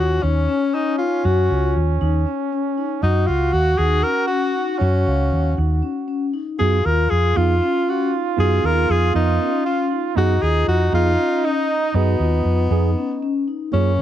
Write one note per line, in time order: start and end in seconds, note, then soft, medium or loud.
0.00 0.21 D#2 medium
0.00 3.04 C#4 medium
0.00 0.14 F4 medium
0.00 0.24 F#4 medium
0.23 0.46 D#2 medium
0.23 0.76 C#4 medium
0.23 0.45 D#4 medium
0.49 0.70 C#4 medium
0.74 0.95 C#4 medium
0.74 0.98 D#4 medium
0.98 1.21 D#4 medium
0.98 1.27 F4 medium
1.25 1.48 F#2 medium
1.25 1.46 F#4 medium
1.25 1.76 F#4 medium
1.50 1.73 C#2 medium
1.76 1.99 D#2 medium
2.01 2.24 D#2 medium
2.01 2.22 D#4 medium
2.27 2.48 C#4 medium
2.53 2.73 C#4 medium
2.78 2.99 D#4 medium
3.03 3.26 F#2 medium
3.03 3.28 D#4 medium
3.03 3.24 F#4 medium
3.03 6.34 F#4 loud
3.27 3.51 C#2 medium
3.27 3.54 F4 medium
3.27 3.70 F5 medium
3.53 3.76 D#2 medium
3.53 3.79 F#4 medium
3.78 4.02 D#2 medium
3.78 4.00 D#4 medium
3.78 4.04 G#4 medium
4.03 4.26 C#4 medium
4.03 4.27 A#4 loud
4.27 4.51 C#4 medium
4.27 4.80 F#4 medium
4.79 5.04 F#2 medium
4.79 5.56 C#4 medium
4.79 5.02 F#4 medium
5.07 5.30 C#2 medium
5.07 5.49 F5 medium
5.32 5.55 D#2 medium
5.57 5.81 D#2 medium
5.57 5.78 D#4 medium
5.82 6.04 C#4 medium
6.08 6.29 C#4 medium
6.34 6.55 D#4 medium
6.59 6.83 F#2 medium
6.59 6.77 B3 medium
6.59 6.78 D#4 soft
6.59 10.17 F4 loud
6.59 6.81 F#4 medium
6.59 6.87 G#4 medium
6.59 6.78 G#4 medium
6.85 7.08 D#2 medium
6.85 7.27 F4 medium
6.85 7.11 A#4 medium
7.10 7.34 F2 medium
7.10 7.38 G#4 medium
7.36 7.59 F2 medium
7.36 7.54 B3 medium
7.36 7.57 D#4 medium
7.36 7.54 D#4 soft
7.36 7.91 F4 medium
7.36 7.54 G#4 medium
7.62 7.83 C#4 medium
7.87 8.08 C#4 medium
7.87 8.14 F#4 medium
8.13 8.34 D#4 medium
8.37 8.61 F#2 medium
8.37 9.09 B3 medium
8.37 9.09 D#4 soft
8.37 8.59 F#4 medium
8.37 9.10 G#4 medium
8.37 8.67 G#4 medium
8.64 8.86 D#2 medium
8.64 8.92 A#4 medium
8.90 9.12 F2 medium
8.90 9.14 G#4 medium
9.14 9.37 F2 medium
9.14 9.50 B3 medium
9.14 9.50 D#4 soft
9.14 9.62 D#4 medium
9.14 9.36 D#4 medium
9.14 9.51 A#4 medium
9.41 9.61 C#4 medium
9.66 9.87 C#4 medium
9.66 9.89 F4 medium
9.91 10.12 D#4 medium
10.16 10.39 F#2 medium
10.16 10.34 B3 medium
10.16 13.47 D#4 medium
10.16 10.34 D#4 medium
10.16 10.38 F#4 medium
10.16 10.44 F#4 medium
10.16 10.35 G#4 medium
10.42 10.65 D#2 medium
10.42 10.84 F4 medium
10.42 10.68 G#4 medium
10.68 10.90 F2 medium
10.68 10.92 F#4 medium
10.92 11.16 F2 medium
10.92 11.10 B3 soft
10.92 11.10 D#4 soft
10.92 11.14 D#4 medium
10.92 11.46 F4 loud
10.92 11.11 G#4 medium
11.19 11.39 C#4 medium
11.44 11.65 C#4 medium
11.44 11.97 D#4 medium
11.94 12.17 F#2 medium
11.94 12.13 B3 soft
11.94 13.22 B3 medium
11.94 12.13 D#4 soft
11.94 12.16 F#4 medium
11.94 12.13 G#4 medium
12.20 12.43 D#2 medium
12.20 12.63 F4 medium
12.45 12.68 F2 medium
12.70 12.94 F2 medium
12.70 12.89 B3 medium
12.70 12.89 D#4 medium
12.70 12.92 D#4 medium
12.70 12.90 G#4 medium
12.98 13.18 C#4 medium
13.23 13.43 C#4 medium
13.48 13.69 D#4 medium
13.71 13.96 F#2 medium
13.71 14.02 A#3 medium
13.71 13.90 A#3 soft
13.71 14.02 C#4 medium
13.71 13.91 F4 soft
13.71 13.91 G#4 medium
13.99 14.02 C#2 medium